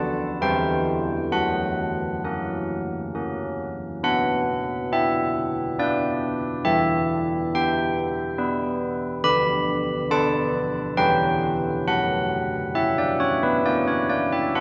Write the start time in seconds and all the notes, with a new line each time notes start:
Already playing: F#4 B4 A5
0.41 E3 E4 C5 G5
1.32 F#3 F#5
2.24 C#4 A#4
3.15 C#4 A#4
4.03 B3 F#5
4.92 D4 E5
5.79 D4 B4 D5
6.65 E3 E5
7.55 B3 G5
8.38 B3 B4
9.24 D3 B5
10.10 B3 B4 A5
10.97 E3 C#4 B4 G5
11.88 F#3 F#5
12.75 C#4 E5
12.98 D5
13.20 C#5
13.43 B4
13.65 C#4 A#4 D5
13.88 C#5
14.09 D5
14.33 E5
14.55 B3 F#5